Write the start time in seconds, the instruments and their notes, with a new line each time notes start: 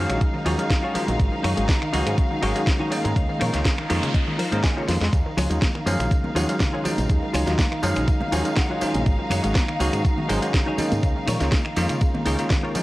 Already playing: tine electric piano D#3 F#3 G#3 C#4 F5, string section D#4 F5, clean electric guitar F4 F#4 G#4 C#5
0.09 fingered electric bass A#1, synth arpeggio sound F#3, finger snap, closed hi-hat
0.21 synth arpeggio sound C#3, kick, closed hi-hat
0.34 synth arpeggio sound D#3
0.45 fingered electric bass D#2, tine electric piano D#3 F#3 G#3 C#4 F#4, synth arpeggio sound F3, clean electric guitar F4 F#4 G#4 C#5, open hi-hat, ride
0.58 tine electric piano D#3 F#3 G#3 C#4 F5, synth arpeggio sound F#3, closed hi-hat
0.70 synth arpeggio sound C#3, kick, snare, closed hi-hat
0.83 synth arpeggio sound D#3, clean electric guitar F4 F#4 G#4 C#5
0.94 tine electric piano D#3 F#3 G#3 C#4 F4, synth arpeggio sound F3, muted fingered electric bass stroke, open hi-hat, ride
1.08 fingered electric bass A#1, synth arpeggio sound F#3, muted clean electric guitar stroke, closed hi-hat
1.19 fingered electric bass G#1, synth arpeggio sound C#3, kick, closed hi-hat
1.32 synth arpeggio sound D#3
1.43 fingered electric bass F#2, synth arpeggio sound F#3, clean electric guitar D#4 F#4 G#4 C#5, finger snap, open hi-hat, ride
1.57 fingered electric bass G#1, tine electric piano D#3 F#3 G#3 C#4 F#4, synth arpeggio sound G#3, closed hi-hat
1.69 synth arpeggio sound C#3, kick, snare, closed hi-hat
1.82 synth arpeggio sound D#3, finger snap
1.92 fingered electric bass C#2, tine electric piano D#3 F#3 G#3 C#4 F#4, synth arpeggio sound F#3, clean electric guitar D#4 F#4 G#4 C#5, open hi-hat, ride
2.06 fingered electric bass G#2, synth arpeggio sound G#3, finger snap, closed hi-hat
2.18 synth arpeggio sound C#3, kick, closed hi-hat
2.31 synth arpeggio sound D#3
2.42 fingered electric bass G#1, tine electric piano D#3 F#3 G#3 C#4 G#4, synth arpeggio sound F#3, clean electric guitar D#4 F#4 G#4 C#5, open hi-hat, ride
2.55 tine electric piano D#3 F#3 G#3 C#4 F#4, synth arpeggio sound G#3, closed hi-hat
2.67 synth arpeggio sound C#3, kick, snare, closed hi-hat
2.79 synth arpeggio sound D#3, clean electric guitar D#4 F#4 G#4 C#5
2.90 tine electric piano D#3 G#3 A#3 C#4 D#4, synth arpeggio sound F#3, open hi-hat, ride
3.04 fingered electric bass G#2, synth arpeggio sound G#3, muted clean electric guitar stroke, closed hi-hat
3.16 fingered electric bass C#2, synth arpeggio sound C#3, kick, closed hi-hat, noise sweep
3.29 synth arpeggio sound D#3
3.40 fingered electric bass A#2, synth arpeggio sound F3, clean electric guitar D#4 F4 A#4 C#5, finger snap, open hi-hat, ride
3.53 fingered electric bass C#2, tine electric piano D#3 G#3 A#3 C#4 F4, synth arpeggio sound G#3, snare, closed hi-hat
3.65 synth arpeggio sound C#3, kick, snare, closed hi-hat
3.78 synth arpeggio sound D#3, finger snap
3.89 fingered electric bass F2, tine electric piano D#3 G#3 A#3 C#4 F4, synth arpeggio sound F3, clean electric guitar D#4 F4 A#4 C#5, open hi-hat, ride
4.03 fingered electric bass C#3, synth arpeggio sound G#3, finger snap, closed hi-hat
4.14 synth arpeggio sound C#3, clean electric guitar D#5, kick, closed hi-hat
4.28 synth arpeggio sound D#3
4.38 synth arpeggio sound F3, clean electric guitar D#4 F4 A#4 C5 F5, open hi-hat, ride
4.52 fingered electric bass G#2, tine electric piano D#3 G#3 A#3 C#4 A#4, synth arpeggio sound A#3, closed hi-hat
4.64 synth arpeggio sound G#3, clean electric guitar G#5, kick, snare, closed hi-hat
4.76 synth arpeggio sound C#3, tine electric piano D#3 G#3 A#3 C#4 F4, clean electric guitar D#4 F4 A#4 C#5
4.88 fingered electric bass F2, synth arpeggio sound F3, clean electric guitar C6, snare, open hi-hat, ride
5.01 fingered electric bass F2, synth arpeggio sound G#3, muted clean electric guitar stroke, snare, open hi-hat
5.13 fingered electric bass D#2, synth arpeggio sound C#3, string section D#4 F5, kick, closed hi-hat, tambourine
5.26 synth arpeggio sound D#3
5.37 fingered electric bass C#2, synth arpeggio sound F3, clean electric guitar F4 F#4 G#4 C#5, finger snap, open hi-hat, ride, tambourine, muted conga, low conga
5.50 fingered electric bass D#2, tine electric piano D#3 F#3 G#3 C#4 F4, synth arpeggio sound F#3, closed hi-hat, tambourine
5.62 synth arpeggio sound C#3, kick, snare, closed hi-hat, tambourine, high conga
5.75 synth arpeggio sound D#3, finger snap
5.86 fingered electric bass F#2, tine electric piano D#3 F#3 G#3 C#4 F5, synth arpeggio sound F3, clean electric guitar F4 F#4 G#4 C#5, open hi-hat, ride, tambourine, muted conga
5.99 fingered electric bass A#1, synth arpeggio sound C#3, finger snap, closed hi-hat, tambourine
6.11 synth arpeggio sound C#3, kick, closed hi-hat, tambourine
6.24 synth arpeggio sound D#3, high conga
6.35 fingered electric bass D#2, tine electric piano D#3 F#3 G#3 C#4 F#4, synth arpeggio sound F3, clean electric guitar F4 F#4 G#4 C#5, open hi-hat, ride, tambourine
6.48 tine electric piano D#3 F#3 G#3 C#4 F5, synth arpeggio sound F#3, closed hi-hat, tambourine
6.60 synth arpeggio sound C#3, kick, snare, closed hi-hat, tambourine
6.73 synth arpeggio sound D#3, clean electric guitar F4 F#4 G#4 C#5
6.84 tine electric piano D#3 F#3 G#3 C#4 D#4, synth arpeggio sound F3, open hi-hat, ride, tambourine, muted conga, low conga
6.97 fingered electric bass A#1, synth arpeggio sound C#3, muted clean electric guitar stroke, closed hi-hat, tambourine, high conga
7.09 fingered electric bass D#2, synth arpeggio sound C#3, kick, closed hi-hat, tambourine
7.22 synth arpeggio sound D#3
7.33 fingered electric bass C#2, synth arpeggio sound F3, clean electric guitar F4 F#4 G#4 C#5, finger snap, open hi-hat, ride, tambourine, muted conga, low conga
7.46 fingered electric bass D#2, tine electric piano D#3 F#3 G#3 C#4 F4, synth arpeggio sound F#3, snare, closed hi-hat, tambourine
7.58 synth arpeggio sound C#3, kick, snare, closed hi-hat, tambourine, high conga
7.71 synth arpeggio sound D#3, finger snap
7.82 fingered electric bass F#2, tine electric piano D#3 F#3 G#3 C#4 F5, synth arpeggio sound F3, clean electric guitar F4 F#4 G#4 C#5, open hi-hat, ride, tambourine
7.96 fingered electric bass A#1, synth arpeggio sound C#3, finger snap, closed hi-hat, tambourine
8.07 synth arpeggio sound C#3, clean electric guitar D#5, kick, closed hi-hat, tambourine
8.20 synth arpeggio sound D#3, muted conga, high conga
8.32 fingered electric bass D#2, tine electric piano D#3 F#3 G#3 C#4 F#4, synth arpeggio sound F3, clean electric guitar F4 F#4 G#4 C#5 F5, open hi-hat, ride, tambourine
8.45 tine electric piano D#3 F#3 G#3 C#4 F5, synth arpeggio sound F#3, closed hi-hat, tambourine
8.56 synth arpeggio sound C#3, clean electric guitar F#5, kick, snare, closed hi-hat, tambourine
8.70 synth arpeggio sound D#3, clean electric guitar F4 F#4 G#4 C#5
8.80 tine electric piano D#3 F#3 G#3 C#4 F4, synth arpeggio sound F3, clean electric guitar G#5, muted fingered electric bass stroke, open hi-hat, ride, tambourine
8.94 fingered electric bass A#1, synth arpeggio sound C#3, muted clean electric guitar stroke, closed hi-hat, tambourine, high conga, low conga
9.06 fingered electric bass G#1, synth arpeggio sound C#3, kick, closed hi-hat, tambourine
9.19 synth arpeggio sound D#3
9.30 fingered electric bass F#2, synth arpeggio sound F#3, clean electric guitar D#4 F#4 G#4 C#5, finger snap, open hi-hat, ride, tambourine, muted conga, low conga
9.43 fingered electric bass G#1, tine electric piano D#3 F#3 G#3 C#4 F#4, synth arpeggio sound G#3, closed hi-hat, tambourine
9.55 synth arpeggio sound C#3, kick, snare, closed hi-hat, tambourine, high conga
9.68 synth arpeggio sound D#3, finger snap
9.79 fingered electric bass C#2, tine electric piano D#3 F#3 G#3 C#4 F#4, synth arpeggio sound F#3, clean electric guitar D#4 F#4 G#4 C#5, open hi-hat, ride, tambourine, muted conga
9.93 fingered electric bass G#2, synth arpeggio sound C#3, finger snap, closed hi-hat, tambourine
10.05 synth arpeggio sound C#3, kick, closed hi-hat, tambourine
10.18 synth arpeggio sound D#3, high conga
10.28 fingered electric bass G#1, tine electric piano D#3 F#3 G#3 C#4 G#4, synth arpeggio sound F#3, clean electric guitar D#4 F#4 G#4 C5, open hi-hat, ride, tambourine
10.42 tine electric piano D#3 F#3 G#3 C#4 F#4, synth arpeggio sound G#3, closed hi-hat, tambourine
10.54 synth arpeggio sound C#3, kick, snare, closed hi-hat, tambourine
10.66 synth arpeggio sound D#3, clean electric guitar D#4 F#4 G#4 C#5
10.78 tine electric piano D#3 G#3 A#3 C#4 D#4, synth arpeggio sound F#3, open hi-hat, ride, tambourine, muted conga, low conga
10.91 fingered electric bass G#2, synth arpeggio sound C#3, muted clean electric guitar stroke, closed hi-hat, tambourine, high conga
11.03 fingered electric bass C#2, synth arpeggio sound C#3, kick, closed hi-hat, tambourine
11.16 synth arpeggio sound D#3
11.27 fingered electric bass A#2, synth arpeggio sound F3, clean electric guitar D#4 F4 A#4 C#5, finger snap, open hi-hat, ride, tambourine, muted conga, low conga
11.40 fingered electric bass C#2, tine electric piano D#3 G#3 A#3 C#4 F4, synth arpeggio sound G#3, snare, closed hi-hat, tambourine
11.52 synth arpeggio sound C#3, kick, snare, closed hi-hat, tambourine, high conga
11.65 synth arpeggio sound D#3, finger snap
11.76 fingered electric bass F2, tine electric piano D#3 G#3 A#3 C#4 F4, synth arpeggio sound F3, clean electric guitar D#4 F4 A#4 C#5, open hi-hat, ride, tambourine
11.89 synth arpeggio sound C#3, fingered electric bass C#3, finger snap, closed hi-hat, tambourine
12.01 synth arpeggio sound C#3, kick, closed hi-hat, tambourine
12.14 synth arpeggio sound D#3, muted conga, high conga
12.25 fingered electric bass C#2, synth arpeggio sound C#3, tine electric piano D#3 G#3 A#3 C#4 G#4, clean electric guitar D#4 F4 A#4 C#5, open hi-hat, ride, tambourine
12.39 synth arpeggio sound C#3, tine electric piano D#3 G#3 A#3 C#4 F4, closed hi-hat, tambourine
12.50 synth arpeggio sound D#3, kick, snare, closed hi-hat, tambourine
12.63 synth arpeggio sound A#3, clean electric guitar D#4 F4 A#4 C#5
12.74 tine electric piano D#3 F#3 G#3 C#4 D#4, synth arpeggio sound F3, muted fingered electric bass stroke, open hi-hat, ride, tambourine